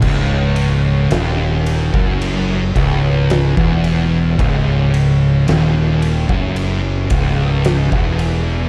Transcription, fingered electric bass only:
\new Staff \with { instrumentName = "Fingered electric bass" } { \clef bass \time 4/4 \key cis \minor \tempo 4 = 55 cis,,4 dis,,8. fis,,8. cis,,8. e,,8. | cis,,4 dis,,8. fis,,8. cis,,8. e,,8. | }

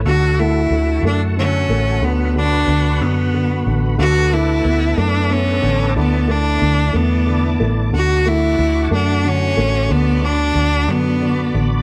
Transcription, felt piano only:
\new Staff \with { instrumentName = "Felt piano" } { \clef bass \time 6/8 \key d \major \tempo 4. = 61 d8 a8 d8 a8 d8 a8 | d8 d8 d8 d8 d8 d8 | d8 a8 b8 a8 b8 d8 | d8 a8 d8 a8 d8 a8 |
d8 a8 d8 a8 d8 a8 | d8 d8 d8 d8 d8 d8 | }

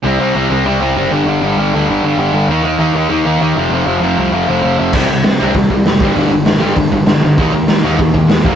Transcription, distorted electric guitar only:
\new Staff \with { instrumentName = "Distorted electric guitar" } { \clef bass \time 4/4 \key c \minor \tempo 4 = 196 <c g c'>8 <c g c'>8 <c g c'>8 <c g c'>8 <c g c'>8 <c g c'>8 <c g c'>8 <g, d g>8 | <g, d g>8 <g, d g>8 <g, d g>8 <g, d g>8 <g, d g>8 <g, d g>8 <g, d g>8 <g, d g>8 | <ees bes ees'>8 <ees bes ees'>8 <ees bes ees'>8 <ees bes ees'>8 <ees bes ees'>8 <ees bes ees'>8 <ees bes ees'>8 <f, c f>8 | <f, c f>8 <f, c f>8 <f, c f>8 <f, c f>8 <f, c f>8 <f, c f>8 <f, c f>8 <f, c f>8 |
<c g c'>8 <c g>8 <c g>8 <c g c'>8 <c g>8 <c g>8 <c g>8 <g, d g>8 | <g, d g>8 <g, d>8 <g, d>8 <g, d g>8 <g, d>8 <g, d>8 <g, d>8 <g, d>8 | <ees bes ees'>8 <ees bes>8 <ees bes>8 <ees bes ees'>8 <ees bes>8 <ees bes>8 <ees bes>8 <f, c f>8 | }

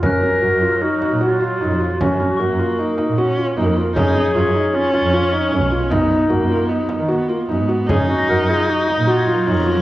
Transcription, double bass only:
\new Staff \with { instrumentName = "Double bass" } { \clef bass \time 5/4 \key fis \major \tempo 4 = 153 fis,16 fis,8 r16 fis,16 fis,8 r4 ais,8 r8. fis,16 eis,8 r16 | fis,16 fis,8 r16 fis,16 fis,8 r4 ais,8 r8. fis,16 eis,8 r16 | fis,16 fis,8 r16 fis,16 fis,8 r4 eis,8 r8. fis,16 b,,8 r16 | fis,16 fis,8 r16 fis,16 fis,8 r4 dis8 r8. fis,16 gis,8 r16 |
fis,16 fis,8 r16 fis,16 fis,8 r4 ais,8 r8. fis,16 eis,8 r16 | }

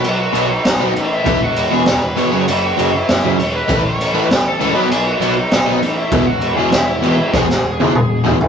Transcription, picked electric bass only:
\new Staff \with { instrumentName = "Picked electric bass" } { \clef bass \time 4/4 \key e \mixolydian \tempo 4 = 197 b,,4 b,,4 b,,8 b,,8 a,,4 | e,,8 e,,8 e,,8 e,,8 e,,8 e,,8 gis,,8 fis,,8 | fis,,4 fis,,4 fis,,8 fis,,8 e,,4 | a,,8 a,,8 a,,8 a,,8 a,,8 a,,8 cis,8 b,,8 |
b,,4 b,,4 b,,8 b,,8 a,,4 | e,,8 e,,8 e,,8 e,,8 e,,8 e,,8 gis,,4 | e,,4 e,,4 e,,8 e,,8 d,4 | }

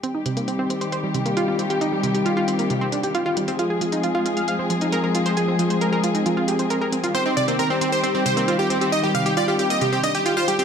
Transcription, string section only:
\new Staff \with { instrumentName = "String section" } { \clef bass \time 4/4 \key c \minor \tempo 4 = 135 << { <ees g g'>1~ | <ees g g'>1 | <f aes aes'>1~ | <f aes aes'>1 |
<ees g g'>1~ | <ees g g'>1 | } \\ { c'1~ | c'1~ | c'1~ | c'1~ |
c'1~ | c'1 | } >> }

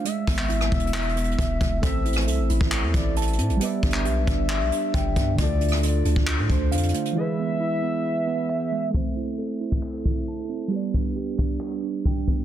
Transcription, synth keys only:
\new Staff \with { instrumentName = "Synth keys" } { \time 4/4 \key a \minor \tempo 4 = 135 r1 | <a a' c'' e''>1 | <g g' b' d''>1 | <d d' f' a'>2. <d d' f' c''>4 |
<e e' gis' b'>1 | <a a' c'' e''>1 | <g g' b' d''>1 | }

